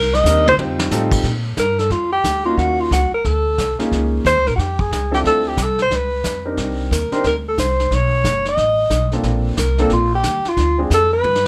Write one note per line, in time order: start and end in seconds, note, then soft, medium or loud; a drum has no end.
0.00 0.23 C2 medium
0.00 0.16 A#4 loud
0.00 snare soft
0.14 0.47 D#5 loud
0.14 snare medium
0.24 0.57 D#2 loud
0.24 0.45 G3 medium
0.24 0.45 C4 medium
0.24 0.45 D4 medium
0.24 0.45 D#4 medium
0.24 0.45 A#4 medium
0.24 snare medium
0.24 hi-hat pedal medium
0.47 0.55 C5 loud
0.47 high tom medium
0.57 0.89 F2 medium
0.57 0.91 G3 medium
0.57 0.91 C4 medium
0.57 0.91 D#4 medium
0.57 0.91 F4 medium
0.57 0.91 C5 medium
0.57 mid tom medium
0.79 snare loud
0.90 1.23 A2 medium
0.90 1.25 G3 medium
0.90 1.25 C4 medium
0.90 1.25 D#4 medium
0.90 1.25 F4 medium
0.90 1.25 A4 medium
0.90 snare medium
0.90 hi-hat pedal medium
1.12 kick medium
1.12 crash medium
1.23 1.56 A#2 medium
1.23 brush sweep soft
1.23 kick soft
1.23 snare soft
1.57 1.90 G2 medium
1.57 1.80 A#4 loud
1.57 kick soft
1.57 snare medium
1.57 hi-hat pedal medium
1.79 1.93 A4 medium
1.79 snare soft
1.90 2.23 F2 medium
1.90 2.12 F4 medium
1.90 brush sweep soft
1.90 kick soft
1.90 snare soft
2.12 2.43 G4 medium
2.24 2.57 D2 medium
2.24 kick soft
2.24 snare medium
2.24 hi-hat pedal soft
2.45 2.89 A#3 medium
2.45 2.89 C#4 medium
2.45 2.89 D#4 medium
2.45 2.59 F4 medium
2.45 2.89 F4 medium
2.45 2.89 F#4 medium
2.57 2.90 D#2 medium
2.57 2.82 F#4 medium
2.57 brush sweep soft
2.57 kick soft
2.57 snare soft
2.80 2.92 F4 medium
2.91 3.11 C#2 medium
2.91 3.12 F#4 medium
2.91 kick soft
2.91 snare medium
2.91 hi-hat pedal medium
3.11 3.27 A#4 medium
3.11 muted upright bass stroke soft
3.25 3.57 D2 medium
3.25 3.79 A4 medium
3.25 brush sweep soft
3.25 kick soft
3.25 snare soft
3.58 3.78 C2 medium
3.58 kick soft
3.58 snare medium
3.58 hi-hat pedal soft
3.79 4.22 A#3 medium
3.79 4.22 C#4 medium
3.79 4.23 D#4 medium
3.79 4.23 F4 medium
3.79 4.22 G#4 medium
3.79 muted upright bass stroke soft
3.79 snare soft
3.92 4.24 C#2 medium
3.92 brush sweep soft
3.92 kick soft
3.92 snare soft
4.24 4.36 D#2 medium
4.24 4.49 C5 loud
4.24 kick soft
4.24 snare medium
4.24 hi-hat pedal medium
4.36 4.46 C#2 medium
4.47 4.57 A#1 medium
4.47 4.55 A#4 medium
4.47 snare soft
4.56 4.90 F2 medium
4.56 4.61 F#4 medium
4.56 4.82 G4 medium
4.56 brush sweep soft
4.56 kick soft
4.56 snare soft
4.79 4.92 G#4 medium
4.79 kick medium
4.91 5.24 C#2 medium
4.91 5.12 G#4 medium
4.91 kick soft
4.91 snare medium
4.91 hi-hat pedal soft
5.11 5.55 C4 medium
5.11 5.55 D4 medium
5.11 5.55 E4 medium
5.11 5.55 F4 medium
5.11 5.19 G4 medium
5.11 5.55 A4 medium
5.11 snare soft
5.24 5.56 D2 medium
5.24 5.49 A4 medium
5.24 brush sweep soft
5.24 kick soft
5.24 snare soft
5.48 5.64 G4 medium
5.57 5.90 C2 medium
5.57 kick soft
5.57 snare medium
5.57 hi-hat pedal medium
5.62 5.81 A4 medium
5.79 5.97 C5 medium
5.79 snare soft
5.91 6.23 C#2 medium
5.91 brush sweep soft
5.91 kick soft
5.91 snare soft
5.96 6.48 B4 medium
6.24 6.57 F2 medium
6.24 kick soft
6.24 snare medium
6.24 hi-hat pedal medium
6.45 6.89 C4 medium
6.45 6.89 D4 soft
6.45 6.89 D#4 medium
6.45 6.89 G4 medium
6.45 6.89 A#4 medium
6.57 6.90 C2 medium
6.57 brush sweep soft
6.57 kick soft
6.57 snare soft
6.91 7.10 D#2 medium
6.91 7.14 A#4 medium
6.91 kick soft
6.91 snare medium
6.91 hi-hat pedal medium
7.12 7.23 C4 medium
7.12 7.23 D4 medium
7.12 7.23 D#4 medium
7.12 7.23 G4 medium
7.12 7.24 A#4 medium
7.12 7.25 C5 medium
7.12 muted upright bass stroke soft
7.12 snare soft
7.24 7.57 D2 medium
7.24 7.36 A#4 medium
7.24 brush sweep soft
7.24 kick soft
7.24 snare soft
7.48 7.58 A4 medium
7.58 7.90 C2 medium
7.58 7.95 C5 medium
7.58 kick soft
7.58 snare medium
7.58 hi-hat pedal medium
7.80 snare soft
7.91 8.23 B1 medium
7.91 8.47 C#5 medium
7.91 brush sweep medium
7.91 kick soft
7.91 snare soft
8.24 8.56 F#1 medium
8.24 kick soft
8.24 snare medium
8.24 hi-hat pedal soft
8.45 9.10 D#5 loud
8.45 snare soft
8.57 8.90 A1 medium
8.57 brush sweep soft
8.57 kick soft
8.57 snare soft
8.90 9.23 B1 medium
8.90 kick soft
8.90 snare medium
8.90 hi-hat pedal medium
9.12 9.55 A#3 medium
9.12 9.56 C4 medium
9.12 9.56 D4 medium
9.12 9.56 F4 medium
9.12 9.56 A4 medium
9.12 snare soft
9.23 9.56 A#1 medium
9.23 brush sweep soft
9.23 kick soft
9.23 snare soft
9.57 9.89 C2 medium
9.57 9.78 A#4 medium
9.57 kick soft
9.57 snare medium
9.57 hi-hat pedal medium
9.78 9.90 A#3 medium
9.78 9.90 C4 medium
9.78 9.90 D4 medium
9.78 9.90 F4 medium
9.78 9.90 A4 medium
9.78 9.91 A4 medium
9.78 snare soft
9.90 10.22 A#1 medium
9.90 10.11 F4 medium
9.90 brush sweep soft
9.90 kick soft
9.90 snare soft
10.15 10.50 G4 medium
10.23 10.43 D#2 medium
10.23 kick soft
10.23 snare medium
10.23 hi-hat pedal medium
10.45 10.80 F4 medium
10.45 muted upright bass stroke soft
10.45 snare soft
10.57 10.89 D2 medium
10.57 brush sweep soft
10.57 kick soft
10.57 snare soft
10.78 10.90 G#3 medium
10.78 10.89 C4 medium
10.78 10.90 D4 medium
10.78 10.90 F4 medium
10.78 10.90 G#4 medium
10.90 11.23 F2 medium
10.90 11.12 A4 loud
10.90 kick soft
10.90 snare medium
10.90 hi-hat pedal medium
11.13 11.47 B4 loud
11.23 11.47 G2 medium
11.23 high tom soft
11.35 snare medium